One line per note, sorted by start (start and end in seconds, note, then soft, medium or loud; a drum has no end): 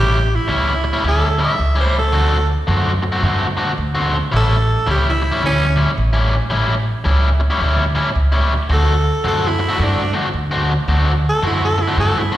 0.00 0.36 A1 medium
0.00 0.17 A2 medium
0.00 0.17 G3 medium
0.00 0.17 C#4 medium
0.00 0.17 E4 medium
0.00 0.37 G4 medium
0.35 1.04 E4 medium
0.48 0.91 C#2 medium
0.48 0.71 A2 medium
0.48 0.71 G3 medium
0.48 0.72 C#4 medium
0.48 0.72 E4 medium
0.84 muted overdriven electric guitar stroke soft
0.93 1.03 A2 medium
0.93 1.03 G3 medium
0.93 1.03 C#4 medium
0.93 1.04 E4 medium
1.04 1.46 D2 medium
1.04 1.26 A2 medium
1.04 1.27 G3 medium
1.04 1.27 C#4 medium
1.04 1.27 E4 medium
1.08 1.41 A4 medium
1.39 1.52 A2 medium
1.39 1.52 G3 medium
1.39 1.52 C#4 medium
1.39 1.52 E4 medium
1.44 1.78 E5 medium
1.59 2.13 C#2 medium
1.75 1.97 A2 medium
1.75 1.97 G3 medium
1.75 1.96 C#4 medium
1.75 1.96 E4 medium
1.80 1.96 C5 medium
1.99 2.50 A4 medium
2.12 2.55 D2 medium
2.12 2.35 D3 medium
2.12 2.36 A3 medium
2.12 2.36 C4 medium
2.12 2.36 F#4 medium
2.67 3.10 F#2 medium
2.67 2.90 D3 medium
2.67 2.90 A3 medium
2.67 2.91 C4 medium
2.67 2.91 F#4 medium
3.02 muted overdriven electric guitar stroke soft
3.12 3.22 D3 medium
3.12 3.22 A3 medium
3.12 3.23 C4 medium
3.12 3.22 F#4 medium
3.23 3.64 G2 medium
3.23 3.45 D3 medium
3.23 3.46 A3 medium
3.23 3.46 C4 medium
3.23 3.46 F#4 medium
3.57 3.70 D3 medium
3.57 3.70 A3 medium
3.57 3.71 C4 medium
3.57 3.71 F#4 medium
3.78 4.19 D2 medium
3.95 4.16 D3 medium
3.95 4.16 A3 medium
3.95 4.15 C4 medium
3.95 4.15 F#4 medium
4.32 4.74 A1 medium
4.32 4.54 A2 medium
4.32 4.55 G3 medium
4.32 4.55 C#4 medium
4.32 4.55 E4 medium
4.36 4.87 A4 medium
4.87 5.29 C#2 medium
4.87 5.09 A2 medium
4.87 5.10 G3 medium
4.87 5.10 C#4 medium
4.87 5.10 E4 medium
4.87 5.06 G4 medium
5.09 5.43 E4 medium
5.22 muted overdriven electric guitar stroke soft
5.32 5.40 A2 medium
5.32 5.41 G3 medium
5.32 5.41 C#4 medium
5.32 5.41 E4 medium
5.41 5.84 D2 medium
5.41 5.64 A2 medium
5.41 5.64 G3 medium
5.41 5.64 C#4 medium
5.41 5.65 E4 medium
5.45 5.77 C#4 loud
5.76 5.89 A2 medium
5.76 5.89 G3 medium
5.76 5.90 C#4 medium
5.76 5.90 E4 medium
5.98 6.39 A1 medium
6.13 6.34 A2 medium
6.13 6.34 G3 medium
6.13 6.34 C#4 medium
6.13 6.34 E4 medium
6.50 6.93 A1 medium
6.50 6.73 A2 medium
6.50 6.73 G3 medium
6.50 6.73 C#4 medium
6.50 6.74 E4 medium
7.04 7.47 C#2 medium
7.04 7.27 A2 medium
7.04 7.28 G3 medium
7.04 7.28 C#4 medium
7.04 7.28 E4 medium
7.40 muted overdriven electric guitar stroke soft
7.50 7.59 A2 medium
7.50 7.60 G3 medium
7.50 7.60 C#4 medium
7.50 7.60 E4 medium
7.60 8.02 D2 medium
7.60 7.83 A2 medium
7.60 7.83 G3 medium
7.60 7.83 C#4 medium
7.60 7.83 E4 medium
7.95 8.08 A2 medium
7.95 8.08 G3 medium
7.95 8.08 C#4 medium
7.95 8.09 E4 medium
8.15 8.57 C#2 medium
8.32 8.53 A2 medium
8.32 8.53 G3 medium
8.32 8.53 C#4 medium
8.32 8.52 E4 medium
8.69 9.11 D2 medium
8.69 8.92 D3 medium
8.69 8.92 A3 medium
8.69 8.93 C4 medium
8.69 8.93 F#4 medium
8.74 9.24 A4 medium
9.24 9.66 F#2 medium
9.24 9.47 D3 medium
9.24 9.47 A3 medium
9.24 9.47 C4 medium
9.24 9.47 F#4 medium
9.24 9.49 A4 medium
9.47 9.85 E4 medium
9.59 muted overdriven electric guitar stroke soft
9.69 9.77 D3 medium
9.69 9.78 A3 medium
9.69 9.79 C4 medium
9.69 9.79 F#4 medium
9.79 10.21 G2 medium
9.79 10.01 D3 medium
9.79 10.02 A3 medium
9.79 10.02 C4 medium
9.79 10.02 F#4 medium
9.83 10.15 D4 medium
10.13 10.26 D3 medium
10.13 10.27 A3 medium
10.13 10.27 C4 medium
10.13 10.27 F#4 medium
10.34 10.75 D2 medium
10.51 10.72 D3 medium
10.51 10.72 A3 medium
10.51 10.71 C4 medium
10.51 10.71 F#4 medium
10.88 11.29 D2 medium
10.88 11.11 D3 medium
10.88 11.11 A3 medium
10.88 11.11 C4 medium
10.88 11.11 F#4 medium
11.29 11.44 A4 medium
11.43 11.84 F#2 medium
11.43 11.65 D3 medium
11.43 11.65 A3 medium
11.43 11.66 C4 medium
11.43 11.66 F#4 medium
11.47 11.62 E4 medium
11.65 11.83 A4 medium
11.78 muted overdriven electric guitar stroke soft
11.82 11.98 E4 medium
11.88 11.96 D3 medium
11.88 11.96 A3 medium
11.88 11.97 C4 medium
11.88 11.97 F#4 medium
11.97 12.37 G2 medium
11.97 12.20 D3 medium
11.97 12.20 A3 medium
11.97 12.20 C4 medium
11.97 12.20 F#4 medium
11.97 12.20 A4 medium
12.18 12.34 E4 medium
12.32 12.37 D3 medium
12.32 12.37 A3 medium
12.32 12.37 C4 medium
12.32 12.37 F#4 medium